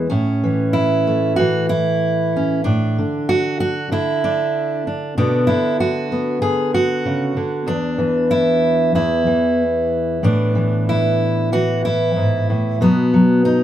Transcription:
0.10 2.64 A2 medium
0.10 1.38 C#4 medium
0.44 1.38 E3 medium
0.73 1.36 E4 medium
1.07 2.62 A3 soft
1.36 2.62 E3 medium
1.36 1.69 F#4 loud
1.69 2.65 E4 medium
2.36 2.63 C#4 soft
2.64 2.97 A2 medium
2.64 3.91 D4 medium
2.98 3.91 D3 medium
3.29 3.59 F#4 loud
3.60 3.91 F#4 medium
3.92 5.17 D3 medium
3.92 4.85 E4 medium
4.24 4.86 D4 medium
4.87 5.14 D4 soft
5.17 5.48 B2 medium
5.17 5.48 D3 soft
5.17 6.11 B3 soft
5.17 6.11 D4 medium
5.47 6.41 D3 medium
5.47 5.79 E4 medium
5.80 6.41 F#4 medium
6.12 9.62 B3 soft
6.42 7.35 D3 medium
6.42 6.73 G#4 medium
6.74 7.68 F#4 medium
7.05 7.37 C#3 medium
7.37 7.68 D3 medium
7.67 8.94 E2 medium
7.67 8.95 D4 medium
7.98 9.26 E3 medium
8.31 8.94 E4 loud
8.95 10.24 E2 medium
8.95 10.24 E4 medium
9.27 10.20 E3 soft
10.23 12.48 A2 medium
10.23 10.54 E3 soft
10.23 12.82 B3 soft
10.23 11.53 D4 medium
10.55 11.51 E3 medium
10.89 11.53 E4 medium
11.52 12.77 E3 medium
11.52 11.85 F#4 loud
11.85 12.81 E4 medium
12.16 12.48 G#2 medium
12.50 12.81 A2 medium
12.81 13.63 B2 medium
12.81 13.13 F#3 soft
12.81 13.45 B3 medium
13.14 13.63 F#3 medium
13.45 13.63 D#4 medium

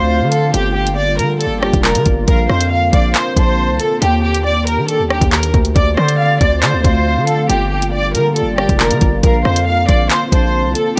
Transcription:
0.00 0.23 D2 loud
0.00 3.98 D3 medium
0.00 0.52 A3 medium
0.00 0.52 C4 medium
0.00 0.52 F4 medium
0.00 0.29 C5 medium
0.00 0.50 F5 loud
0.21 0.52 D3 loud
0.32 0.49 A4 medium
0.32 closed hi-hat medium
0.54 1.21 G1 loud
0.54 2.26 G3 medium
0.54 5.72 A#3 medium
0.54 3.98 F4 medium
0.54 0.71 G4 medium
0.54 0.95 G5 loud
0.54 closed hi-hat medium
0.75 0.92 G4 medium
0.87 closed hi-hat medium
0.97 1.14 D5 loud
1.19 1.48 D3 loud
1.19 1.36 A#4 medium
1.19 closed hi-hat medium
1.41 1.58 A4 medium
1.41 2.24 D5 loud
1.41 closed hi-hat medium
1.46 1.72 G1 loud
1.63 1.80 G4 medium
1.63 cross-stick loud
1.73 1.97 F1 loud
1.73 kick loud
1.73 closed hi-hat medium
1.84 2.01 A#4 medium
1.84 clap loud
1.95 2.05 D3 loud
1.95 closed hi-hat medium
2.06 2.27 G1 loud
2.06 kick loud
2.06 closed hi-hat medium
2.28 2.49 A#1 loud
2.28 4.00 C4 medium
2.28 2.45 A#4 medium
2.28 3.33 F5 loud
2.28 kick loud
2.28 closed hi-hat medium
2.49 2.91 F2 loud
2.49 2.67 C5 medium
2.49 cross-stick medium
2.61 closed hi-hat medium
2.71 2.88 F5 medium
2.93 3.14 A#1 loud
2.93 3.10 D5 medium
2.93 kick loud
2.93 closed hi-hat medium
3.14 3.32 C5 medium
3.14 clap loud
3.14 closed hi-hat medium
3.36 3.70 A#1 loud
3.36 3.77 C5 medium
3.36 3.98 A5 medium
3.36 kick loud
3.36 closed hi-hat medium
3.69 3.79 C2 loud
3.80 3.97 A4 medium
3.80 closed hi-hat medium
4.02 4.79 D#2 loud
4.02 5.74 D#3 medium
4.02 5.74 D4 medium
4.02 5.74 G4 medium
4.02 4.19 G4 medium
4.02 4.43 G5 loud
4.02 closed hi-hat medium
4.24 4.41 G4 medium
4.34 closed hi-hat medium
4.45 4.62 D5 loud
4.67 4.84 A#4 medium
4.67 closed hi-hat medium
4.78 5.01 D#3 loud
4.88 5.06 A4 medium
4.88 closed hi-hat medium
5.00 5.20 D#2 loud
5.10 5.28 G4 medium
5.10 cross-stick loud
5.21 5.53 D#2 loud
5.21 kick loud
5.21 closed hi-hat medium
5.32 5.49 A#4 medium
5.32 clap loud
5.43 closed hi-hat medium
5.54 5.75 D2 loud
5.54 kick loud
5.54 closed hi-hat soft
5.65 closed hi-hat medium
5.76 5.97 D2 loud
5.76 10.93 D3 medium
5.76 7.48 A3 medium
5.76 7.48 C4 medium
5.76 10.93 F4 medium
5.76 5.93 D5 medium
5.76 6.80 D5 loud
5.76 kick loud
5.76 closed hi-hat medium
5.97 6.39 D3 loud
5.97 6.14 C5 medium
5.97 cross-stick medium
6.08 closed hi-hat medium
6.19 6.36 F5 medium
6.41 6.64 D2 loud
6.41 6.58 D5 medium
6.41 kick medium
6.41 closed hi-hat medium
6.62 6.75 D3 loud
6.62 6.80 C5 medium
6.62 clap loud
6.62 closed hi-hat medium
6.73 6.84 D2 loud
6.84 7.18 D2 loud
6.84 7.25 C5 medium
6.84 7.46 F5 loud
6.84 kick loud
6.84 closed hi-hat medium
7.17 7.48 D3 loud
7.27 7.45 A4 medium
7.27 closed hi-hat medium
7.49 8.16 G1 loud
7.49 9.22 G3 medium
7.49 11.00 A#3 medium
7.49 7.66 G4 loud
7.49 7.91 G5 loud
7.49 closed hi-hat medium
7.71 7.88 G4 medium
7.82 closed hi-hat medium
7.93 8.10 D5 medium
8.15 8.43 D3 loud
8.15 8.32 A#4 medium
8.15 closed hi-hat medium
8.36 8.53 A4 medium
8.36 9.20 D5 medium
8.36 closed hi-hat medium
8.42 8.68 G1 loud
8.58 8.75 G4 medium
8.58 cross-stick loud
8.69 8.92 F1 loud
8.69 kick loud
8.69 closed hi-hat medium
8.80 8.97 A#4 medium
8.80 clap loud
8.91 9.01 D3 loud
8.91 closed hi-hat medium
9.01 9.23 G1 loud
9.01 kick loud
9.01 closed hi-hat medium
9.23 9.44 A#1 loud
9.23 10.96 C4 medium
9.23 9.40 A#4 medium
9.23 10.28 F5 loud
9.23 kick loud
9.23 closed hi-hat medium
9.45 9.87 F2 loud
9.45 9.62 C5 medium
9.45 cross-stick medium
9.56 closed hi-hat loud
9.67 9.84 F5 medium
9.89 10.10 A#1 loud
9.89 10.06 D5 medium
9.89 kick loud
9.89 closed hi-hat medium
10.10 10.27 C5 medium
10.10 clap loud
10.10 closed hi-hat medium
10.32 10.66 A#1 loud
10.32 10.73 C5 medium
10.32 10.94 A5 medium
10.32 kick medium
10.32 closed hi-hat medium
10.65 10.75 C2 loud
10.75 10.93 A4 medium
10.75 closed hi-hat medium

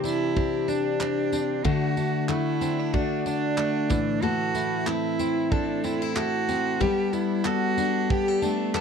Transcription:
0.00 1.64 C3 medium
0.00 1.65 E3 medium
0.00 0.35 C4 medium
0.00 1.31 C4 medium
0.00 0.68 D4 medium
0.00 0.69 E4 loud
0.00 0.35 G4 medium
0.00 1.73 G4 medium
0.04 0.68 D4 medium
0.04 tambourine medium
0.36 1.00 C4 medium
0.36 0.99 G4 medium
0.36 kick medium
0.68 1.97 D4 medium
0.68 1.66 D4 medium
0.68 1.33 D4 medium
0.68 tambourine medium
1.00 1.65 C4 medium
1.00 1.65 G4 medium
1.00 clap loud
1.32 1.72 C4 soft
1.32 2.61 D4 medium
1.32 tambourine medium
1.65 3.98 D3 medium
1.65 1.97 A3 medium
1.65 2.29 F#4 medium
1.65 2.92 F#4 medium
1.65 kick loud
1.97 2.94 A3 medium
1.97 2.60 D4 medium
1.97 tambourine medium
2.29 4.87 A3 medium
2.29 2.96 E4 loud
2.29 3.98 F#4 medium
2.29 clap loud
2.61 2.79 C4 medium
2.61 3.25 D4 medium
2.61 tambourine medium
2.79 3.26 D4 medium
2.94 3.58 A3 medium
2.94 3.26 D4 medium
2.94 3.57 F#4 medium
2.94 kick loud
3.26 3.98 D4 medium
3.26 4.24 D4 loud
3.26 tambourine medium
3.58 4.55 A3 medium
3.58 3.97 F#4 medium
3.58 clap loud
3.90 4.21 A2 medium
3.90 4.22 E3 medium
3.90 kick loud
3.90 tambourine medium
4.22 6.81 A2 medium
4.22 6.81 E3 medium
4.22 4.88 F#4 loud
4.22 5.51 A4 medium
4.55 5.52 A3 medium
4.55 5.18 E4 medium
4.55 tambourine medium
4.87 6.48 C4 medium
4.87 5.54 E4 loud
4.87 clap loud
5.19 5.83 C4 medium
5.19 5.84 E4 medium
5.19 tambourine medium
5.52 6.16 A3 medium
5.52 5.86 D4 medium
5.52 6.16 A4 medium
5.52 kick loud
5.84 6.48 C4 medium
5.84 6.02 D4 medium
5.84 6.18 E4 loud
5.84 tambourine medium
6.02 6.88 E4 medium
6.16 6.81 A3 medium
6.16 6.83 F#4 loud
6.16 6.81 A4 medium
6.16 clap loud
6.49 6.88 C4 medium
6.49 tambourine medium
6.80 8.81 G3 medium
6.80 7.12 B3 medium
6.80 7.15 G4 medium
6.80 8.10 A4 medium
6.80 kick loud
7.13 8.09 B3 medium
7.13 7.77 D4 medium
7.13 7.47 E4 medium
7.13 tambourine medium
7.45 8.81 B3 medium
7.45 8.12 F#4 loud
7.45 8.81 A4 medium
7.45 clap loud
7.78 8.42 D4 medium
7.78 tambourine medium
8.10 8.74 B3 medium
8.10 8.28 G4 medium
8.10 8.45 G4 loud
8.10 kick loud
8.28 8.73 A4 soft
8.42 8.78 A3 medium
8.42 8.81 D4 medium
8.42 tambourine medium
8.74 8.81 B3 medium
8.74 8.81 B3 loud
8.74 8.81 A4 medium
8.74 clap loud

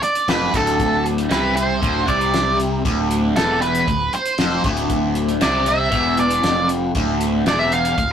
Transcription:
0.02 0.30 D5 medium
0.02 muted overdriven electric guitar stroke medium
0.02 muted fingered electric bass stroke soft
0.02 closed hi-hat medium
0.15 closed hi-hat medium
0.28 0.52 F1 medium
0.28 0.54 F2 loud
0.28 0.56 B4 medium
0.28 snare loud
0.28 closed hi-hat medium
0.53 1.27 D1 medium
0.53 1.30 D2 medium
0.53 1.03 A4 medium
0.53 kick medium
0.53 closed hi-hat medium
0.67 closed hi-hat medium
0.80 kick loud
0.80 closed hi-hat medium
1.06 closed hi-hat medium
1.18 closed hi-hat medium
1.31 1.79 C2 loud
1.31 1.82 C3 loud
1.31 1.56 B4 medium
1.31 snare loud
1.31 closed hi-hat medium
1.56 2.10 C5 medium
1.56 closed hi-hat medium
1.82 2.06 D1 medium
1.82 2.07 D2 loud
1.82 kick loud
1.82 closed hi-hat medium
2.07 2.81 C2 medium
2.07 2.84 C3 medium
2.07 2.56 D5 medium
2.07 kick medium
2.07 closed hi-hat medium
2.21 closed hi-hat medium
2.34 snare loud
2.34 closed hi-hat medium
2.60 closed hi-hat medium
2.85 3.33 D1 loud
2.85 3.36 D2 loud
2.85 kick loud
2.85 closed hi-hat medium
3.11 closed hi-hat medium
3.36 3.84 E1 medium
3.36 3.87 E2 medium
3.36 3.61 A4 medium
3.36 snare loud
3.36 closed hi-hat medium
3.62 4.14 B4 medium
3.62 closed hi-hat medium
3.75 closed hi-hat medium
3.87 4.12 D1 medium
3.87 4.08 D2 medium
3.87 kick medium
3.87 closed hi-hat medium
4.13 4.62 C5 medium
4.13 muted fingered electric bass stroke soft
4.13 muted overdriven electric guitar stroke medium
4.13 closed hi-hat medium
4.26 closed hi-hat medium
4.38 4.63 F1 medium
4.38 4.64 F2 loud
4.38 snare loud
4.38 closed hi-hat medium
4.64 5.38 D1 loud
4.64 5.41 D2 loud
4.64 kick medium
4.64 closed hi-hat medium
4.77 closed hi-hat medium
4.90 kick medium
4.90 closed hi-hat medium
5.15 closed hi-hat medium
5.29 closed hi-hat medium
5.41 5.89 C2 medium
5.41 5.91 C3 loud
5.41 5.68 D5 medium
5.41 snare loud
5.41 closed hi-hat medium
5.66 6.19 E5 loud
5.66 closed hi-hat medium
5.92 6.40 E1 loud
5.92 6.43 E2 loud
5.92 kick loud
5.92 closed hi-hat medium
6.17 6.67 D5 medium
6.17 closed hi-hat medium
6.30 closed hi-hat medium
6.43 6.92 F1 medium
6.43 6.94 F2 loud
6.43 snare loud
6.43 closed hi-hat medium
6.69 closed hi-hat medium
6.95 7.43 D1 medium
6.95 7.46 D2 medium
6.95 kick medium
6.95 closed hi-hat medium
7.21 closed hi-hat medium
7.46 7.95 E1 medium
7.46 7.97 E2 loud
7.46 7.59 D5 medium
7.46 snare loud
7.46 closed hi-hat medium
7.59 7.73 E5 medium
7.72 8.12 F5 loud
7.72 closed hi-hat medium
7.85 closed hi-hat medium
7.97 8.13 D1 medium
7.97 8.13 D2 medium
7.97 kick medium
7.97 closed hi-hat medium

